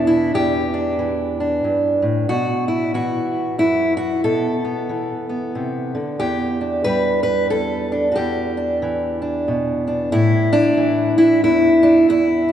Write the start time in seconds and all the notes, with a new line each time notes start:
Already playing: E2 B2 E3 G3 D4
0.07 E4
0.34 E2 G4
0.74 D4
0.99 E3
1.40 D4
1.64 G2
2.02 A2
2.29 B2 F#4
2.68 E4
2.94 E3 F#4
3.58 F#2 E4
3.97 F#4
4.24 B2 A4
4.65 B3
4.89 E3
5.29 B3
5.55 C3
5.95 D3
6.20 E2 G4
6.61 D4
6.84 G3 B4
7.23 B4
7.50 E2 A4
7.92 D4
8.12 F#4 G4
8.17 E2
8.57 D4
8.82 E3
9.22 D4
9.48 B2
9.87 D4
10.12 A2 E4
10.53 D4
10.77 E3
11.18 E4
11.43 E2 E4
11.83 D4
12.09 E2 E4
12.48 D4